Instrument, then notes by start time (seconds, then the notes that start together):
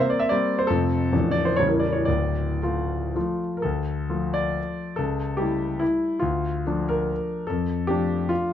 grand piano
Already playing: A#3 C4
0.00 C5
0.10 D5
0.19 E5
0.29 G3 A#3 C4 D5
0.59 C5
0.67 F1 F2 F3 A3 A4
0.71 C4
1.12 A0 A1 F3 A3 D4
1.31 D5
1.45 C5
1.56 A0 A1 G3 A3 E4 C#5
1.68 A#4
1.80 D5
1.92 C#5
2.05 D1 D2 D5
2.63 A3 F4
3.15 F3 A3 F4
3.57 A#4
3.62 D2 A4
4.09 F3 A3 F4
4.34 D5
4.96 C#2 A4
5.37 G3 A3 E4 G4
5.80 E4
6.20 D2 F4
6.67 F3 A3 D4
6.89 A#4
7.47 F2 A4
7.87 F3 A3 D4 G4
8.29 F4